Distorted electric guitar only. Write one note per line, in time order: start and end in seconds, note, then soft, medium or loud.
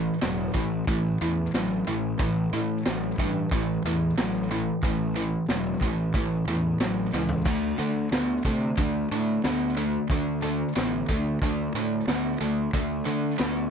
0.00 0.18 A2 medium
0.00 0.18 E3 medium
0.22 0.51 A2 medium
0.22 0.51 F#3 medium
0.55 0.84 A2 medium
0.55 0.84 E3 medium
0.88 1.17 A2 medium
0.88 1.17 E3 medium
1.21 1.50 A2 medium
1.21 1.51 E3 medium
1.55 1.84 A2 medium
1.55 1.84 F#3 medium
1.87 2.16 A2 medium
1.87 2.17 E3 medium
2.19 2.49 A2 medium
2.19 2.49 E3 medium
2.53 2.82 A2 medium
2.53 2.83 E3 medium
2.86 3.15 A2 medium
2.86 3.15 F#3 medium
3.20 3.48 A2 medium
3.20 3.49 E3 medium
3.52 3.81 A2 medium
3.52 3.81 E3 medium
3.86 4.14 A2 medium
3.86 4.15 E3 medium
4.18 4.47 A2 medium
4.18 4.47 F#3 medium
4.51 4.80 A2 medium
4.51 4.80 E3 medium
4.84 5.13 A2 medium
4.84 5.13 E3 medium
5.16 5.46 A2 medium
5.16 5.46 E3 medium
5.50 5.79 A2 medium
5.50 5.79 F#3 medium
5.82 6.12 A2 medium
5.82 6.12 E3 medium
6.15 6.44 A2 medium
6.15 6.44 E3 medium
6.48 6.77 A2 medium
6.48 6.77 E3 medium
6.80 7.10 A2 medium
6.80 7.10 F#3 medium
7.14 7.43 A2 medium
7.14 7.43 E3 medium
7.45 7.75 D3 medium
7.45 7.76 A3 medium
7.78 8.08 D3 medium
7.78 8.09 A3 medium
8.12 8.42 D3 medium
8.12 8.42 B3 medium
8.45 8.75 D3 medium
8.45 8.75 A3 medium
8.77 9.07 D3 medium
8.77 9.08 A3 medium
9.12 9.41 D3 medium
9.12 9.41 A3 medium
9.44 9.74 D3 medium
9.44 9.74 B3 medium
9.77 10.06 D3 medium
9.77 10.07 A3 medium
10.11 10.40 D3 medium
10.11 10.40 A3 medium
10.42 10.72 D3 medium
10.42 10.73 A3 medium
10.76 11.05 D3 medium
10.76 11.05 B3 medium
11.09 11.38 D3 medium
11.09 11.38 A3 medium
11.43 11.72 D3 medium
11.43 11.72 A3 medium
11.76 12.05 D3 medium
11.76 12.05 A3 medium
12.08 12.38 D3 medium
12.08 12.37 B3 medium
12.41 12.70 D3 medium
12.41 12.70 A3 medium
12.74 13.03 D3 medium
12.74 13.04 A3 medium
13.06 13.36 D3 medium
13.06 13.36 A3 medium
13.38 13.68 D3 medium
13.38 13.69 B3 medium